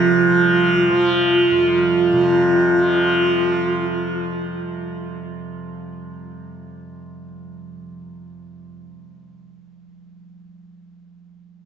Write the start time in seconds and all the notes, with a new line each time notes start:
Already playing: F2 C3 F3 F4
0.29 F3
0.91 F3
1.51 F2
2.12 C3
2.75 F3